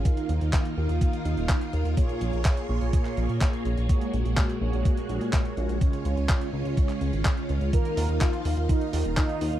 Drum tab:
HH |xxxxxx-xxxxxxxxx|xxxxxx-xxxxxxxxx|xxxxxx-xxxxxxxxx|xxxxxx-xxxxxxxxx|
CP |----x-------x---|----x----x--x---|----x-------x---|----x----x--x---|
BD |o---o---o---o---|o---o---o---o---|o---o---o---o---|o---o---o---o---|

HH |xxoxxxoxxxoxxxox|
CP |----x-------x---|
BD |o---o---o---o---|